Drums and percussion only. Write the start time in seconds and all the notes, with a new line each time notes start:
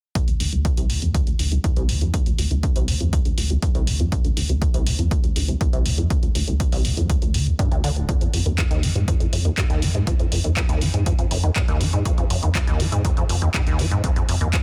0.15 kick, closed hi-hat
0.28 closed hi-hat
0.40 open hi-hat
0.53 closed hi-hat
0.65 kick, closed hi-hat
0.77 closed hi-hat
0.90 open hi-hat
1.02 closed hi-hat
1.14 kick, closed hi-hat
1.27 closed hi-hat
1.39 open hi-hat
1.52 closed hi-hat
1.64 kick, closed hi-hat
1.76 closed hi-hat
1.89 open hi-hat
2.01 closed hi-hat
2.14 kick, closed hi-hat
2.26 closed hi-hat
2.38 open hi-hat
2.51 closed hi-hat
2.63 kick, closed hi-hat
2.76 closed hi-hat
2.88 open hi-hat
3.00 closed hi-hat
3.13 kick, closed hi-hat
3.25 closed hi-hat
3.38 open hi-hat
3.50 closed hi-hat
3.62 kick, closed hi-hat
3.75 closed hi-hat
3.87 open hi-hat
4.00 closed hi-hat
4.12 kick, closed hi-hat
4.25 closed hi-hat
4.37 open hi-hat
4.49 closed hi-hat
4.62 kick, closed hi-hat
4.74 closed hi-hat
4.87 open hi-hat
4.99 closed hi-hat
5.11 kick, closed hi-hat
5.24 closed hi-hat
5.36 open hi-hat
5.48 closed hi-hat
5.61 kick, closed hi-hat
5.73 closed hi-hat
5.86 open hi-hat
5.98 closed hi-hat
6.10 kick, closed hi-hat
6.23 closed hi-hat
6.35 open hi-hat
6.48 closed hi-hat
6.60 kick, closed hi-hat
6.72 open hi-hat
6.85 open hi-hat
6.97 closed hi-hat
7.10 kick, closed hi-hat
7.22 closed hi-hat
7.34 open hi-hat
7.47 closed hi-hat
7.59 kick, closed hi-hat
7.72 closed hi-hat
7.84 open hi-hat
7.96 closed hi-hat
8.09 kick, closed hi-hat
8.21 closed hi-hat
8.34 open hi-hat
8.46 closed hi-hat
8.58 kick, clap, closed hi-hat
8.71 closed hi-hat
8.83 open hi-hat
8.96 closed hi-hat
9.08 kick, closed hi-hat
9.20 closed hi-hat
9.33 open hi-hat
9.45 closed hi-hat
9.57 kick, clap, closed hi-hat
9.70 closed hi-hat
9.82 open hi-hat
9.95 closed hi-hat
10.07 kick, closed hi-hat
10.19 closed hi-hat
10.32 open hi-hat
10.44 closed hi-hat
10.57 kick, clap, closed hi-hat
10.69 closed hi-hat
10.81 open hi-hat
10.94 closed hi-hat
11.06 kick, closed hi-hat
11.19 closed hi-hat
11.31 open hi-hat
11.43 closed hi-hat
11.56 kick, clap, closed hi-hat
11.68 closed hi-hat
11.81 open hi-hat
11.93 closed hi-hat
12.05 kick, closed hi-hat
12.18 closed hi-hat
12.30 open hi-hat
12.43 closed hi-hat
12.55 kick, clap, closed hi-hat
12.67 closed hi-hat
12.80 open hi-hat
12.92 closed hi-hat
13.05 kick, closed hi-hat
13.17 closed hi-hat
13.29 open hi-hat
13.42 closed hi-hat
13.54 kick, clap, closed hi-hat
13.67 closed hi-hat
13.79 open hi-hat
13.91 closed hi-hat
14.04 kick, closed hi-hat
14.16 closed hi-hat
14.29 open hi-hat
14.41 closed hi-hat
14.53 kick, clap, closed hi-hat